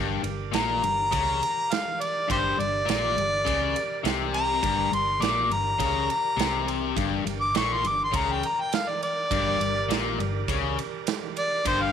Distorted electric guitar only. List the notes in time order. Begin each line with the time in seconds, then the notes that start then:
Already playing: G2
0.23 G2
0.52 A#2
0.83 G2
1.12 C#3
2.28 G2
2.58 G2
2.86 A#2
3.16 G2
3.45 C#3
4.04 C3
4.62 G2
4.92 G2
5.21 A#2
5.50 G2
5.79 C#3
6.37 C3
6.96 G2
7.25 G2
7.55 A#2
7.84 G2
8.12 C#3
9.32 G2
9.59 G2
9.89 A#2
10.19 G2
10.48 C#3
11.65 G2